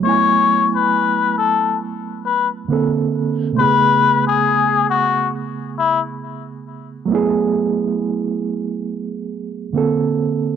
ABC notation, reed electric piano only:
X:1
M:4/4
L:1/8
Q:"Swing 16ths" 1/4=68
K:F#m
V:1 name="Reed electric piano"
[F,A,B,Eg]6 [D,^A,^B,=A]2 | [B,,C,A,B,G]8 | [F,A,B,EG]6 [D,^A,^B,=A]2 |]